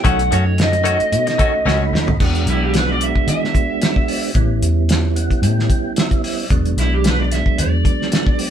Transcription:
0.04 B1 D#3 A3 C#4 D#4 F#4 F#5, kick, closed hi-hat
0.19 closed hi-hat
0.31 F#2 D#3 A3 C#4 F#4 C#5, closed hi-hat
0.46 muted clean electric guitar stroke
0.58 D#5, muted clean electric guitar stroke, snare, closed hi-hat
0.72 muted clean electric guitar stroke, closed hi-hat
0.84 D#3 A3 C#4 F#4, closed hi-hat
1.00 muted fingered electric bass stroke, muted clean electric guitar stroke, closed hi-hat
1.12 B2, closed hi-hat
1.27 muted clean electric guitar stroke, snare, closed hi-hat
1.38 D#3 A3 C#4 F#4, kick, closed hi-hat
1.54 muted clean electric guitar stroke
1.65 C#2 D#3 A3 C#4 F#4 B5, snare
1.92 D#2, muted clean electric guitar stroke, snare
2.07 muted clean electric guitar stroke, floor tom
2.20 E2 G#3 B3 D4 F#4, kick, crash
2.35 closed hi-hat
2.46 B1, closed hi-hat
2.50 E4
2.63 G4
2.74 B4, snare, closed hi-hat
2.91 D5
3.01 E5, closed hi-hat
3.16 kick
3.27 E3 E5, closed hi-hat
3.44 snare
3.55 kick, closed hi-hat
3.82 snare, closed hi-hat
3.96 kick
4.08 open hi-hat
4.34 A1 G3 B3 C#4 E4, kick, closed hi-hat
4.62 E2, closed hi-hat
4.89 snare, closed hi-hat
5.16 F#5, closed hi-hat
5.30 muted fingered electric bass stroke, kick, closed hi-hat
5.42 A2 G5, closed hi-hat
5.60 snare
5.70 kick, closed hi-hat
5.96 E5, snare, closed hi-hat
6.11 kick, closed hi-hat
6.24 E5, open hi-hat
6.50 E1 F#3 G#3 B3 D4, kick, closed hi-hat
6.65 closed hi-hat
6.77 B1 E4, snare, closed hi-hat
6.94 G4
7.04 B4, snare, closed hi-hat
7.21 D5
7.32 E5, snare, closed hi-hat
7.46 muted fingered electric bass stroke, kick
7.58 E2 D5, closed hi-hat
7.85 kick, closed hi-hat
8.02 snare
8.12 snare, closed hi-hat
8.27 kick
8.39 open hi-hat

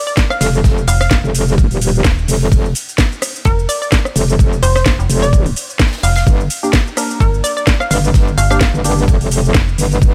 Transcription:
0.07 D5, shaker
0.17 kick, snare, ride, shaker
0.30 F5, cross-stick, shaker
0.41 F1 F5, snare, open hi-hat, ride, shaker
0.53 ride, shaker
0.64 F1, kick, snare, ride, shaker
0.78 shaker
0.87 F1 F5, open hi-hat, ride, shaker
1.01 F5, cross-stick, snare, shaker
1.11 kick, snare, ride, shaker
1.24 F1, shaker
1.35 open hi-hat, ride, shaker
1.48 snare, shaker
1.58 kick, ride, shaker
1.71 D#1, open hi-hat, shaker
1.81 open hi-hat, ride, shaker
1.95 shaker
2.04 D#1, kick, snare, ride, shaker
2.18 shaker
2.28 F1, open hi-hat, shaker
2.41 ride, shaker
2.52 F1, kick, ride, shaker
2.65 shaker
2.75 open hi-hat, ride, shaker
2.89 shaker
2.98 kick, snare, ride, shaker
3.12 shaker
3.22 cross-stick, open hi-hat, ride, shaker
3.36 shaker
3.45 F1 A#4, kick, ride, shaker
3.59 shaker
3.69 D5, open hi-hat, ride, shaker
3.82 D5, shaker
3.92 kick, snare, ride, shaker
4.05 cross-stick, shaker
4.15 F1, open hi-hat, ride, shaker
4.28 ride, shaker
4.39 F1, kick, ride, shaker
4.53 shaker
4.63 F1 C5, open hi-hat, ride, shaker
4.75 C5, cross-stick, snare, shaker
4.86 kick, snare, ride, shaker
4.99 F1, shaker
5.10 F1, open hi-hat, ride, shaker
5.22 D5, snare, shaker
5.33 kick, ride, shaker
5.46 open hi-hat, shaker
5.56 open hi-hat, ride, shaker
5.70 shaker
5.79 kick, snare, ride, shaker
5.87 snare, ride
5.92 snare, ride, shaker
5.98 snare, ride
6.03 F1 F5, open hi-hat, shaker
6.15 F5, snare, ride, shaker
6.27 G1, kick, ride, shaker
6.40 shaker
6.50 open hi-hat, ride, shaker
6.63 A#3 D4 G4, shaker
6.73 kick, snare, ride, shaker
6.87 shaker
6.97 A#3 D4 A#4, cross-stick, open hi-hat, ride, shaker
7.11 shaker
7.20 G1 A#4, kick, ride, shaker
7.34 shaker
7.44 D5, open hi-hat, ride, shaker
7.57 D5, shaker
7.67 kick, snare, ride, shaker
7.80 F5, cross-stick, shaker
7.90 G1 F5, snare, open hi-hat, ride, shaker
8.04 ride, shaker
8.14 G1, kick, snare, ride, shaker
8.28 shaker
8.38 G1 F5, open hi-hat, ride, shaker
8.50 A#3 D4 G4 F5, cross-stick, snare, shaker
8.61 kick, snare, ride, shaker
8.74 G1, shaker
8.84 A#3 D4 G4, open hi-hat, ride, shaker
8.98 snare, shaker
9.08 kick, ride, shaker
9.21 F1, open hi-hat, shaker
9.31 open hi-hat, ride, shaker
9.45 shaker
9.54 F1, kick, snare, ride, shaker
9.68 shaker
9.78 G1, open hi-hat, shaker
9.91 ride, shaker
10.02 G1, kick, ride, shaker

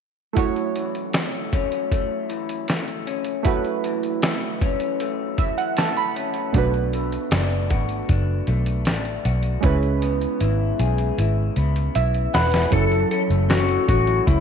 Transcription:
0.33 F#2 A3 E4 F#4, kick, closed hi-hat
0.38 C#5
0.56 closed hi-hat
0.76 E3, closed hi-hat
0.95 closed hi-hat
1.13 A3, snare, closed hi-hat
1.32 closed hi-hat
1.53 C#4, kick, closed hi-hat
1.72 closed hi-hat
1.92 A3, kick, closed hi-hat
2.29 E3, closed hi-hat
2.49 closed hi-hat
2.68 A3, snare, closed hi-hat
2.88 closed hi-hat
3.07 C#4, closed hi-hat
3.25 closed hi-hat
3.43 F#2 A3 E4 F#4, kick, closed hi-hat
3.48 B4
3.65 closed hi-hat
3.84 E3, closed hi-hat
4.03 closed hi-hat
4.22 A3, snare, closed hi-hat
4.41 closed hi-hat
4.62 C#4, kick, closed hi-hat
4.80 closed hi-hat
5.00 A3, closed hi-hat
5.38 E3 E5, kick, closed hi-hat
5.58 F#5, closed hi-hat
5.77 A3 A5, snare, closed hi-hat
5.97 B5, closed hi-hat
6.16 C#4, closed hi-hat
6.34 closed hi-hat
6.53 B1 B2 A3 D4 F#4, kick, closed hi-hat
6.58 B4
6.74 closed hi-hat
6.93 A3, closed hi-hat
7.12 closed hi-hat
7.31 F#1 D4, snare, closed hi-hat
7.50 closed hi-hat
7.70 G#1 F#4, kick, closed hi-hat
7.89 closed hi-hat
8.09 F#1 D4, kick, closed hi-hat
8.47 B1 A3, closed hi-hat
8.66 closed hi-hat
8.85 A1 D4, snare, closed hi-hat
9.05 closed hi-hat
9.25 B1 F#4, closed hi-hat
9.43 closed hi-hat
9.61 C#2 C#3 G#3 C#4 E4, kick, closed hi-hat
9.66 B4
9.83 closed hi-hat
10.02 B3, closed hi-hat
10.22 closed hi-hat
10.40 G#1 E4, closed hi-hat
10.79 B1 G#4, closed hi-hat
10.98 closed hi-hat
11.18 G#1 E4, closed hi-hat
11.56 C#2 B3, closed hi-hat
11.76 closed hi-hat
11.95 B1 E4 E5, closed hi-hat
12.14 closed hi-hat
12.34 E1 F#4 B4 F#5, snare, closed hi-hat
12.52 G#4, snare, closed hi-hat
12.71 F#1 F#2 F#3 C#4 E4 A4, kick, closed hi-hat
12.75 A4
12.92 E3, closed hi-hat
13.11 C#4 A4, closed hi-hat
13.30 F#1 A3, closed hi-hat
13.49 C#4 F#4, snare, closed hi-hat
13.69 A3, closed hi-hat
13.88 A1 C#4 F#4, kick, closed hi-hat
14.07 E3, closed hi-hat
14.26 C#2 F#2 E4, kick, closed hi-hat

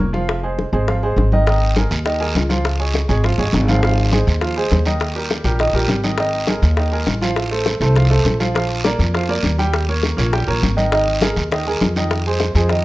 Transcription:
0.00 F1
0.13 F3 F4 F5, high bongo, high conga
0.29 high bongo, high conga
0.43 G#3 G#4 C5, high conga
0.58 high bongo, high conga
0.73 G#1 G#3 G#4 C5, high bongo, high conga
0.88 F3 F4 F5, high bongo, high conga
1.03 G#3 G#4 C5, high bongo, high conga
1.16 G#1, high bongo, low bongo, high conga
1.32 D#3 D#4 D#5, high bongo, high conga
1.47 D#3 D#4 D#5, high bongo, high conga, long guiro
1.62 high conga
1.76 G#3 G#4 A#4, high bongo, high conga, short guiro
1.91 D#2, high bongo, high conga, short guiro
2.05 D#3 D#4 D#5, high bongo, high conga, long guiro
2.20 G#3 G#4 A#4, high bongo, high conga
2.35 C#2, high bongo, low bongo, high conga, short guiro
2.49 F3 F4 F5, high bongo, high conga, short guiro
2.65 high bongo, high conga, long guiro
2.79 G#3 G#4 C#5, high conga
2.94 high bongo, high conga, short guiro
3.08 G#1 G#3 G#4 C#5, high bongo, high conga, short guiro
3.24 F3 F4 F5, high bongo, high conga, long guiro
3.38 G1 G#3 G#4 C#5, high bongo, high conga
3.53 G#1, high bongo, low bongo, high conga, short guiro
3.68 F3 F4 F5, high bongo, high conga, short guiro
3.83 F3 F4 F5, high bongo, high conga, long guiro
3.98 high conga
4.12 G#3 G#4 C5, high bongo, high conga, short guiro
4.27 D#2, high bongo, high conga, short guiro
4.41 F3 F4 F5, high bongo, high conga, long guiro
4.56 G#3 G#4 C5, high bongo, high conga
4.71 D#2, high bongo, low bongo, high conga, short guiro
4.86 D#3 D#4 D#5, high bongo, high conga, short guiro
5.00 high bongo, high conga, long guiro
5.16 G3 G4 A#4, high conga
5.30 high bongo, high conga, short guiro
5.44 A#1 G3 G4 A#4, high bongo, high conga, short guiro
5.59 D#3 D#4 D#5, high bongo, high conga, long guiro
5.73 A#1 G3 G4 A#4, high bongo, high conga
5.88 G#1, high bongo, low bongo, high conga, short guiro
6.04 D#3 D#4 D#5, high bongo, high conga, short guiro
6.18 D#3 D#4 D#5, high bongo, high conga, long guiro
6.33 high conga
6.47 G#3 G#4 A#4, high bongo, high conga, short guiro
6.62 D#2, high bongo, high conga, short guiro
6.77 D#3 D#4 D#5, high bongo, high conga, long guiro
6.92 G#3 G#4 A#4, high bongo, high conga
7.07 A1, high bongo, low bongo, high conga, short guiro
7.21 F3 F4 F5, high bongo, high conga, short guiro
7.36 high bongo, high conga, long guiro
7.51 A3 A4 C5, high conga
7.66 high bongo, high conga, short guiro
7.81 C2 A3 A4 C5, high bongo, high conga, short guiro
7.96 F3 F4 F5, high bongo, high conga, long guiro
8.10 A3 A4 C5, high bongo, high conga
8.25 A#1, high bongo, low bongo, high conga, short guiro
8.40 F3 F4 F5, high bongo, high conga, short guiro
8.54 F3 F4 F5, high bongo, high conga, long guiro
8.70 high conga
8.84 A#3 A#4 D5, high bongo, high conga, short guiro
8.99 F2, high bongo, high conga, short guiro
9.14 F3 F4 F5, high bongo, high conga, long guiro
9.29 A#3 A#4 D5, high bongo, high conga
9.43 D#2, high bongo, low bongo, high conga, short guiro
9.58 G3 G4 G5, high bongo, high conga, short guiro
9.74 high bongo, high conga, long guiro
9.88 A#3 A#4 C#5, high conga
10.03 high bongo, high conga, short guiro
10.17 A#1 A#3 A#4 C#5, high bongo, high conga, short guiro
10.32 G3 G4 G5, high bongo, high conga, long guiro
10.47 A#1 A#3 A#4 C#5, high bongo, high conga
10.62 G#1, high bongo, low bongo, high conga, short guiro
10.77 D#3 D#4 D#5, high bongo, high conga, short guiro
10.92 D#3 D#4 D#5, high bongo, high conga, long guiro
11.07 high conga
11.21 G#3 G#4 A#4, high bongo, high conga, short guiro
11.36 D#2, high bongo, high conga, short guiro
11.51 D#3 D#4 D#5, high bongo, high conga, low conga, long guiro
11.66 G#3 G#4 A#4, high bongo, high conga, low conga
11.81 F2, high bongo, low bongo, high conga, short guiro
11.96 D#3 D#4 D#5, high bongo, high conga, short guiro
12.11 high bongo, high conga, long guiro
12.26 G#3 G#4 C5, high conga
12.40 high bongo, high conga, short guiro
12.55 F2 G#3 G#4 C5, high bongo, high conga, short guiro
12.69 D#3 D#4 D#5, high bongo, high conga, long guiro

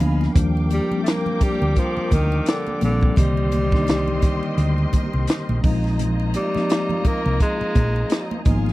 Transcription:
Already playing: F3 D#4 D#5 F5 G#5 B5
0.00 D2 F3 A#3 B3 D4 F5, closed hi-hat, low conga, triangle
0.21 snare, muted triangle
0.35 D#2 F3 G3 A#3 D4 G4 A#4 G5 D6, kick, closed hi-hat, muted conga, low conga, muted triangle
0.57 muted triangle
0.71 G3, closed hi-hat, high conga, triangle
0.90 F3 G3 A#3 C4, muted fingered electric bass stroke, muted triangle
0.98 D4
1.03 A3, closed hi-hat, muted conga, muted triangle
1.08 A#3, snare
1.26 high conga, low conga, muted triangle
1.41 G3, muted fingered electric bass stroke, kick, closed hi-hat, muted conga, high conga, triangle
1.62 D2, muted triangle
1.76 F3, kick, closed hi-hat, muted conga, muted triangle
1.97 muted fingered electric bass stroke, muted triangle
2.11 D2 D#3, kick, closed hi-hat, high conga, triangle
2.32 muted triangle
2.46 D3, snare, closed hi-hat, muted triangle
2.67 high conga, muted triangle
2.81 A#1 D3 F3 G3 A#3 C4, closed hi-hat, muted conga, low conga, triangle
3.01 kick, muted triangle
3.16 C2 D3 D#3 G3 A#3 C4 G4 A#4 C5 D#5 C6, kick, closed hi-hat, muted conga, low conga, muted triangle
3.37 muted triangle
3.52 closed hi-hat, high conga, triangle
3.72 D#3 G3 A#3 D4, kick, snare, muted triangle
3.80 D#4
3.87 snare, closed hi-hat, muted conga, muted triangle
4.07 high conga, low conga, muted triangle
4.22 kick, closed hi-hat, high conga, triangle
4.43 muted triangle
4.58 D2, closed hi-hat, muted conga, muted triangle
4.78 muted triangle
4.93 kick, closed hi-hat, muted conga, high conga, triangle
5.14 C2, muted triangle
5.27 snare, closed hi-hat, muted triangle
5.49 A#1, high conga, muted triangle
5.63 A#1 F3 G#3 A#3 C4 D#4 F4 C5 D#5 G#5 A#5, kick, open hi-hat, muted conga, low conga, triangle
5.84 snare, muted triangle
5.99 closed hi-hat, low conga, muted triangle
6.20 muted triangle
6.34 G3, closed hi-hat, high conga, triangle
6.55 F3 A#3 C4 D#4, muted fingered electric bass stroke, snare, muted triangle
6.70 snare, closed hi-hat, muted triangle
6.89 high conga, low conga, muted triangle
7.05 A#3, muted fingered electric bass stroke, kick, closed hi-hat, high conga, triangle
7.26 C2, muted triangle
7.40 G#3, kick, closed hi-hat, muted conga, muted triangle
7.61 muted fingered electric bass stroke, muted triangle
7.75 A#1, kick, closed hi-hat, muted conga, high conga, triangle
7.96 muted triangle
8.10 snare, closed hi-hat, muted conga, muted triangle
8.31 high conga, muted triangle
8.45 G#1 F3 G#3 A#3 B3 D#4 F4 G#4 D#5 F5 G#5, kick, closed hi-hat, low conga, triangle
8.66 snare, muted triangle

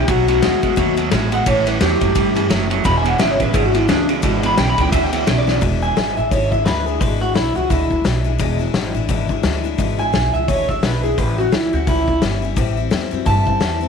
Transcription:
0.08 B1 B2 D#3 F#3 A3 B3 F#4, kick, ride
0.28 B2 F#3 A3 B3 F#4, ride
0.42 D#2 B2 D#3 G#3 A3 B3 F#4, snare, ride
0.62 E2 B2 G#3 A3 B3 F#4, kick, ride
0.76 D#2 B2 D#3 F#3 A3 B3 F#4, kick, ride
0.97 B2 F#3 A3 B3 F#4, ride
1.11 A1 B2 D#3 G#3 A3 B3 F#4, snare, ride
1.32 B2 G#3 A3 B3 F#4 F#5, ride
1.46 A1 A2 E3 G3 C#4 E4 C#5, kick, ride
1.66 A2 E3 G3 C#4 E4 B4, ride
1.81 E2 A2 E3 F#3 G3 C#4 E4 G4, snare, ride
2.01 F#2 A2 F#3 G3 C#4 E4, kick, ride
2.15 G2 A2 E3 G3 C#4 E4, kick, ride
2.35 A2 E3 G3 C#4 E4, ride
2.49 F#1 A2 E3 F#3 G3 C#4 E4, snare, ride
2.70 A2 F#3 G3 C#4 E4, ride
2.84 E1 E2 B2 E3 G#3 D4 E4 B5, kick, ride
2.97 G#5
3.04 E2 B2 E3 G#3 D4 E4 F#5, ride
3.18 G#1 E2 C#3 E3 G#3 D4 E4 E5, snare, ride
3.31 C#5
3.40 A1 E2 C#3 E3 G#3 D4 E4 B4, kick, ride
3.54 G#1 E2 B2 E3 G#3 D4 E4 G#4, kick, ride
3.65 F#4
3.74 E2 B2 E3 G#3 D4 E4, ride
3.88 D2 E2 C#3 E3 G#3 D4 E4, snare, ride
4.09 E2 C#3 E3 G#3 D4 E4, ride
4.22 G#1 E2 B2 E3 G#3 D4 E4, kick, ride
4.43 E2 B2 E3 G#3 D4 E4 B5, ride
4.58 B1 E2 C#3 E3 G#3 D4 E4 G5, snare, ride
4.70 B5
4.78 C#2 E2 C#3 E3 G#3 D4 E4 G5, kick, ride
4.92 D2 E2 B2 E3 G#3 D4 E4 E5, kick, ride
5.04 G5
5.12 E2 B2 E3 G#3 D4 E4, ride
5.17 E5
5.27 B1 E2 C#3 E3 G#3 D4 E4 D5, snare, ride
5.38 D5
5.47 E2 C#3 E3 G#3 D4 E4, snare
5.61 E1 E2 B2 E3 G#3 D4 E4, kick, open hi-hat
5.82 E3 G#3 D4 E4 G#5
5.96 G#1 E3 G#3 D4 E4, snare, open hi-hat
6.17 A1 E3 G#3 D4 E4 E5
6.31 G#1 E2 B2 E3 G#3 D4 E4 C#5, kick, open hi-hat
6.51 E3 G#3 D4 E4 E5, kick
6.65 D2 E3 G#3 D4 E4 B4, snare, open hi-hat
6.86 E3 G#3 D4 E4 G#4
7.00 G#1 E2 B2 E3 G#3 D4 E4 B4, kick, open hi-hat
7.20 E3 G#3 D4 E4 F#4
7.34 B1 E3 G#3 D4 E4, snare, open hi-hat
7.55 C#2 E3 G#3 D4 E4 F#4
7.70 D2 E2 B2 E3 G#3 D4 E4, kick, open hi-hat
7.90 E3 G#3 D4 E4, kick
8.04 B1 E3 G#3 D4 E4, snare, open hi-hat
8.24 E3 G#3 D4 E4
8.39 E1 E2 B2 E3 G#3 D4 E4, kick, open hi-hat
8.59 E3 G#3 D4 E4
8.74 G#1 E3 G#3 D4 E4, snare, open hi-hat
8.94 A1 E3 G#3 D4 E4
9.09 G#1 E2 B2 E3 G#3 D4 E4, kick, open hi-hat
9.29 E3 G#3 D4 E4, kick
9.43 D2 E3 G#3 D4 E4, snare, open hi-hat
9.64 E3 G#3 D4 E4
9.78 G#1 E2 B2 E3 G#3 D4 E4, kick, open hi-hat
9.98 E3 G#3 D4 E4 G#5
10.13 B1 E3 G#3 D4 E4, snare, open hi-hat
10.34 C#2 E3 G#3 D4 E4 E5
10.48 D2 E2 B2 E3 G#3 D4 E4 C#5, kick, open hi-hat
10.68 E3 G#3 D4 E4 E5, kick
10.83 B1 E3 G#3 D4 E4 B4, snare, open hi-hat
11.03 E3 G#3 D4 E4 G#4
11.18 A1 A2 E3 G3 C#4 E4 B4, kick, open hi-hat
11.38 G3 C#4 E4 F#4
11.52 C#2 E3 G3 C#4 E4, snare, open hi-hat
11.73 D2 G3 C#4 E4 F#4
11.87 C#2 A2 E3 G3 C#4 E4, kick, open hi-hat
12.08 G3 C#4 E4, kick
12.22 G1 E3 G3 C#4 E4, snare, open hi-hat
12.42 G3 C#4 E4
12.56 A1 A2 E3 G3 C4 E4, kick, open hi-hat
12.77 G3 C4 E4
12.91 E2 E3 G3 C4 E4, snare, open hi-hat
13.11 F#2 G3 C4 E4
13.26 G2 A2 E3 G3 C4 E4 A5, kick, open hi-hat
13.45 G3 C4 E4, kick
13.60 E2 E3 G3 C4 E4, snare, open hi-hat
13.81 G3 C4 E4

